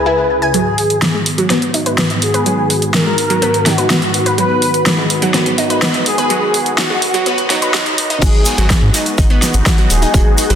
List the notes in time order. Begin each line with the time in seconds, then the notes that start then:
Already playing: C#2 C#3 E4 G#4 B4
0.06 E4
0.42 G#5
0.54 G#2 D#3 F#3 B3 F#4 G#4, closed hi-hat
0.78 open hi-hat
0.90 closed hi-hat
1.02 snare, closed hi-hat
1.14 G#3
1.26 open hi-hat
1.38 F#3, closed hi-hat
1.50 B3, snare, closed hi-hat
1.62 closed hi-hat
1.74 D#4, open hi-hat
1.86 B4, closed hi-hat
1.98 B3, snare, closed hi-hat
2.10 closed hi-hat
2.22 G#4, open hi-hat
2.34 B4, closed hi-hat
2.46 F#3, closed hi-hat
2.70 open hi-hat
2.82 closed hi-hat
2.94 A#4, snare, closed hi-hat
3.06 G#3
3.18 open hi-hat
3.30 F#3, closed hi-hat
3.42 B3, closed hi-hat
3.54 closed hi-hat
3.66 D#4 F#4, snare, open hi-hat
3.78 B4, closed hi-hat
3.90 B3, snare, closed hi-hat
4.02 closed hi-hat
4.14 open hi-hat
4.26 B4, closed hi-hat
4.38 F#3 B4, closed hi-hat
4.62 open hi-hat
4.74 closed hi-hat
4.86 snare, closed hi-hat
4.98 G#3
5.10 open hi-hat
5.22 F#3, closed hi-hat
5.34 B3, snare, closed hi-hat
5.46 closed hi-hat
5.58 D#4, open hi-hat
5.70 B4, closed hi-hat
5.82 B3, snare, closed hi-hat
5.94 closed hi-hat
6.06 G#4, open hi-hat
6.18 B4, closed hi-hat
6.30 F#3, closed hi-hat
6.54 open hi-hat
6.66 closed hi-hat
6.78 F#4, snare, closed hi-hat
6.90 G#3
7.02 open hi-hat
7.14 F#3, closed hi-hat
7.26 B3, closed hi-hat
7.38 closed hi-hat
7.50 F#3 D#4, snare, open hi-hat
7.62 B4, closed hi-hat
7.74 F#3, snare, closed hi-hat
7.86 closed hi-hat
7.98 open hi-hat
8.10 D#4, closed hi-hat
8.21 G#1 F#3 G#3 B3 D#4 F#4 G#4, kick, closed hi-hat, crash, shaker
8.46 snare, closed hi-hat, open hi-hat, shaker
8.58 G#1 F#3, snare, closed hi-hat, shaker
8.70 kick, snare, closed hi-hat, shaker
8.82 G#2
8.94 D#4, snare, closed hi-hat, open hi-hat, shaker
9.06 closed hi-hat, shaker
9.18 G#1 D#4, kick, closed hi-hat, shaker
9.30 B3, closed hi-hat
9.42 snare, closed hi-hat, open hi-hat, shaker
9.53 G#1, closed hi-hat, shaker
9.66 F#4, kick, snare, closed hi-hat, shaker
9.78 F#3, closed hi-hat
9.90 D#1 G#4, closed hi-hat, open hi-hat, shaker
10.02 D#4, closed hi-hat, shaker
10.14 D#1 F#3, kick, closed hi-hat, shaker
10.38 closed hi-hat, open hi-hat, shaker
10.50 G#1 F#3, closed hi-hat, shaker